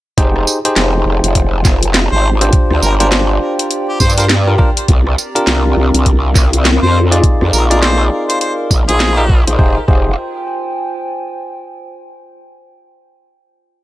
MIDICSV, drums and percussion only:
0, 0, Header, 1, 2, 480
1, 0, Start_track
1, 0, Tempo, 588235
1, 144, Time_signature, 4, 2, 24, 8
1, 11292, End_track
2, 0, Start_track
2, 0, Title_t, "Drums"
2, 144, Note_on_c, 9, 42, 55
2, 145, Note_on_c, 9, 36, 121
2, 226, Note_off_c, 9, 42, 0
2, 227, Note_off_c, 9, 36, 0
2, 291, Note_on_c, 9, 37, 58
2, 373, Note_off_c, 9, 37, 0
2, 385, Note_on_c, 9, 54, 64
2, 467, Note_off_c, 9, 54, 0
2, 530, Note_on_c, 9, 42, 68
2, 612, Note_off_c, 9, 42, 0
2, 623, Note_on_c, 9, 38, 123
2, 623, Note_on_c, 9, 42, 56
2, 705, Note_off_c, 9, 38, 0
2, 705, Note_off_c, 9, 42, 0
2, 1011, Note_on_c, 9, 42, 72
2, 1093, Note_off_c, 9, 42, 0
2, 1103, Note_on_c, 9, 42, 57
2, 1105, Note_on_c, 9, 36, 61
2, 1185, Note_off_c, 9, 42, 0
2, 1187, Note_off_c, 9, 36, 0
2, 1345, Note_on_c, 9, 38, 64
2, 1345, Note_on_c, 9, 54, 64
2, 1346, Note_on_c, 9, 36, 107
2, 1427, Note_off_c, 9, 36, 0
2, 1427, Note_off_c, 9, 38, 0
2, 1427, Note_off_c, 9, 54, 0
2, 1490, Note_on_c, 9, 42, 73
2, 1571, Note_off_c, 9, 42, 0
2, 1584, Note_on_c, 9, 38, 125
2, 1584, Note_on_c, 9, 42, 57
2, 1666, Note_off_c, 9, 38, 0
2, 1666, Note_off_c, 9, 42, 0
2, 1969, Note_on_c, 9, 37, 39
2, 1969, Note_on_c, 9, 42, 68
2, 2050, Note_off_c, 9, 37, 0
2, 2050, Note_off_c, 9, 42, 0
2, 2061, Note_on_c, 9, 42, 55
2, 2066, Note_on_c, 9, 36, 127
2, 2143, Note_off_c, 9, 42, 0
2, 2147, Note_off_c, 9, 36, 0
2, 2207, Note_on_c, 9, 37, 53
2, 2289, Note_off_c, 9, 37, 0
2, 2305, Note_on_c, 9, 54, 61
2, 2386, Note_off_c, 9, 54, 0
2, 2450, Note_on_c, 9, 42, 70
2, 2532, Note_off_c, 9, 42, 0
2, 2544, Note_on_c, 9, 38, 125
2, 2544, Note_on_c, 9, 42, 56
2, 2626, Note_off_c, 9, 38, 0
2, 2626, Note_off_c, 9, 42, 0
2, 2932, Note_on_c, 9, 42, 69
2, 3014, Note_off_c, 9, 42, 0
2, 3024, Note_on_c, 9, 42, 59
2, 3105, Note_off_c, 9, 42, 0
2, 3264, Note_on_c, 9, 54, 59
2, 3267, Note_on_c, 9, 36, 107
2, 3342, Note_off_c, 9, 54, 0
2, 3342, Note_on_c, 9, 54, 49
2, 3348, Note_off_c, 9, 36, 0
2, 3407, Note_on_c, 9, 42, 74
2, 3423, Note_off_c, 9, 54, 0
2, 3423, Note_on_c, 9, 54, 41
2, 3489, Note_off_c, 9, 42, 0
2, 3504, Note_on_c, 9, 38, 127
2, 3504, Note_on_c, 9, 42, 58
2, 3505, Note_off_c, 9, 54, 0
2, 3586, Note_off_c, 9, 38, 0
2, 3586, Note_off_c, 9, 42, 0
2, 3745, Note_on_c, 9, 37, 37
2, 3747, Note_on_c, 9, 36, 110
2, 3827, Note_off_c, 9, 37, 0
2, 3828, Note_off_c, 9, 36, 0
2, 3893, Note_on_c, 9, 42, 71
2, 3974, Note_off_c, 9, 42, 0
2, 3985, Note_on_c, 9, 42, 55
2, 3987, Note_on_c, 9, 36, 127
2, 4067, Note_off_c, 9, 42, 0
2, 4068, Note_off_c, 9, 36, 0
2, 4134, Note_on_c, 9, 37, 52
2, 4216, Note_off_c, 9, 37, 0
2, 4230, Note_on_c, 9, 54, 61
2, 4311, Note_off_c, 9, 54, 0
2, 4373, Note_on_c, 9, 42, 68
2, 4455, Note_off_c, 9, 42, 0
2, 4464, Note_on_c, 9, 38, 127
2, 4464, Note_on_c, 9, 42, 56
2, 4546, Note_off_c, 9, 38, 0
2, 4546, Note_off_c, 9, 42, 0
2, 4851, Note_on_c, 9, 42, 71
2, 4933, Note_off_c, 9, 42, 0
2, 4945, Note_on_c, 9, 42, 58
2, 4946, Note_on_c, 9, 36, 65
2, 5026, Note_off_c, 9, 42, 0
2, 5028, Note_off_c, 9, 36, 0
2, 5185, Note_on_c, 9, 38, 66
2, 5185, Note_on_c, 9, 54, 63
2, 5186, Note_on_c, 9, 36, 112
2, 5266, Note_off_c, 9, 38, 0
2, 5266, Note_off_c, 9, 54, 0
2, 5267, Note_off_c, 9, 36, 0
2, 5331, Note_on_c, 9, 42, 70
2, 5413, Note_off_c, 9, 42, 0
2, 5428, Note_on_c, 9, 38, 124
2, 5428, Note_on_c, 9, 42, 56
2, 5509, Note_off_c, 9, 38, 0
2, 5509, Note_off_c, 9, 42, 0
2, 5811, Note_on_c, 9, 37, 36
2, 5811, Note_on_c, 9, 42, 68
2, 5893, Note_off_c, 9, 37, 0
2, 5893, Note_off_c, 9, 42, 0
2, 5904, Note_on_c, 9, 42, 52
2, 5905, Note_on_c, 9, 36, 127
2, 5986, Note_off_c, 9, 36, 0
2, 5986, Note_off_c, 9, 42, 0
2, 6048, Note_on_c, 9, 37, 51
2, 6130, Note_off_c, 9, 37, 0
2, 6146, Note_on_c, 9, 54, 64
2, 6227, Note_off_c, 9, 54, 0
2, 6291, Note_on_c, 9, 42, 65
2, 6372, Note_off_c, 9, 42, 0
2, 6386, Note_on_c, 9, 38, 126
2, 6386, Note_on_c, 9, 42, 53
2, 6468, Note_off_c, 9, 38, 0
2, 6468, Note_off_c, 9, 42, 0
2, 6771, Note_on_c, 9, 42, 66
2, 6852, Note_off_c, 9, 42, 0
2, 6864, Note_on_c, 9, 42, 57
2, 6945, Note_off_c, 9, 42, 0
2, 7105, Note_on_c, 9, 36, 115
2, 7105, Note_on_c, 9, 54, 65
2, 7186, Note_off_c, 9, 36, 0
2, 7187, Note_off_c, 9, 54, 0
2, 7251, Note_on_c, 9, 42, 70
2, 7333, Note_off_c, 9, 42, 0
2, 7345, Note_on_c, 9, 38, 127
2, 7345, Note_on_c, 9, 42, 54
2, 7427, Note_off_c, 9, 38, 0
2, 7427, Note_off_c, 9, 42, 0
2, 7585, Note_on_c, 9, 36, 111
2, 7586, Note_on_c, 9, 37, 35
2, 7666, Note_off_c, 9, 36, 0
2, 7668, Note_off_c, 9, 37, 0
2, 7731, Note_on_c, 9, 42, 63
2, 7813, Note_off_c, 9, 42, 0
2, 7825, Note_on_c, 9, 36, 120
2, 7907, Note_off_c, 9, 36, 0
2, 8065, Note_on_c, 9, 36, 118
2, 8147, Note_off_c, 9, 36, 0
2, 11292, End_track
0, 0, End_of_file